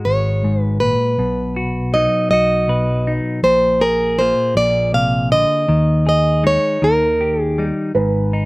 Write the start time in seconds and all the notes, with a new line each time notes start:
Already playing: G#2 G#3 F#4
0.05 G#1 C#5
0.44 G#2
0.62 B4
0.80 A#2 B4
1.18 B1 B2
1.56 F#4
1.94 F#3 D#4 D#5
2.30 B1 F#4 D#5
2.68 B2 B4
3.07 D#4
3.43 A#1 A#2 C5
3.81 G#4 A#4
4.19 A#3 F4 C5
4.55 A#1 A#2 D5
4.94 C3 F5
5.32 D3 D#5
5.68 D#2 D#3
6.07 G#4 D#5
6.43 G#3 D#4 C#5
6.82 D#2 D#3 A#4
7.21 G4
7.42 G#4
7.58 G3 D#4
7.95 G#1 G#2 B4
8.33 D#4